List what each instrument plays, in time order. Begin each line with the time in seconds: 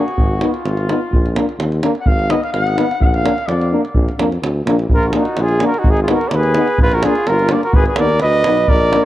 Already playing: flugelhorn F#4
0.08 davul high
0.16 tuba G#1, davul low
0.41 trombone B3, euphonium D#4, davul high
0.50 flugelhorn F4, davul high
0.65 tuba G#1, davul high
0.77 davul high
0.89 trombone B3, euphonium D#4, davul high
1.12 tuba A#1, davul low
1.26 davul high
1.36 trombone A#3, euphonium D4, davul high
1.49 davul high
1.59 tuba D#2, davul high
1.72 davul high
1.83 trombone A#3, euphonium D4, davul high
1.95 davul high
2.01 flugelhorn F#5
2.06 tuba G#1, flugelhorn F5, davul low
2.19 davul high
2.30 trombone B3, euphonium D#4, flugelhorn D#5, davul high
2.43 flugelhorn F5, davul high
2.53 tuba G#1, flugelhorn F#5, davul high
2.67 davul high
2.77 trombone B3, euphonium D#4, davul high
2.91 davul high
3.01 tuba A#1, flugelhorn F5, davul low
3.06 flugelhorn F#5
3.14 flugelhorn F5, davul high
3.23 trombone A#3, euphonium D4, davul high
3.38 davul high
3.47 tuba F2, flugelhorn D5, davul high
3.61 davul high
3.72 trombone A#3, euphonium D4
3.85 davul high
3.94 tuba A#1, davul low
4.09 davul high
4.18 tuba F2, trombone A#3, euphonium D4, davul high
4.32 davul high
4.42 tuba D2, davul high
4.66 tuba A#1, trombone A#3, euphonium D4, davul high
4.79 davul high
4.89 tuba A#1, davul low
4.94 flugelhorn F4, cornet A#4
5.03 flugelhorn F#4, davul high
5.08 flugelhorn F4, cornet A#4
5.13 trombone A#3, euphonium D4, cornet G#4, davul high
5.18 flugelhorn D#4, cornet F#4
5.25 davul high
5.37 tuba A#1, davul high
5.41 flugelhorn F4, cornet G#4
5.48 davul high
5.60 trombone A#3, euphonium D4, davul high
5.65 flugelhorn F#4, cornet A#4
5.74 flugelhorn D#4, davul high
5.79 cornet F#4
5.84 tuba G#1, davul low
5.91 flugelhorn D#4, cornet G#4
5.97 davul high
6.02 flugelhorn F4, cornet G#4
6.08 trombone B3, euphonium D#4, flugelhorn F#4, davul high
6.13 cornet A#4
6.21 davul high
6.29 tuba D#2, flugelhorn A#4, cornet D5, davul high
6.35 flugelhorn G#4, cornet B4
6.43 davul high
6.54 trombone B3, euphonium D#4, davul high
6.67 davul high
6.78 tuba A#1, flugelhorn F4, cornet B4, davul low
6.92 flugelhorn F#4, cornet A#4, davul high
7.03 trombone A#3, euphonium D4, flugelhorn F4, cornet G#4, davul high
7.15 davul high
7.27 tuba G1, flugelhorn F4, cornet A#4, davul high
7.39 davul high
7.49 trombone A#3, euphonium D4, cornet D5, davul high
7.54 flugelhorn A#4
7.63 flugelhorn F#4, cornet A#4, davul high
7.73 tuba G#1, flugelhorn G#4, cornet B4, davul low
7.86 flugelhorn G#4, cornet B4, davul high
7.96 tuba D#2, trombone B3, euphonium D#4, flugelhorn A#4, cornet D5, davul high
8.09 davul high
8.20 tuba D2, flugelhorn B4, cornet D#5, davul high
8.33 davul high
8.44 tuba B1, trombone B3, euphonium D#4, davul high
8.57 davul high
8.68 tuba A#1, flugelhorn A#4, cornet D5, davul low
8.81 davul high
8.93 trombone A#3, euphonium D4, davul high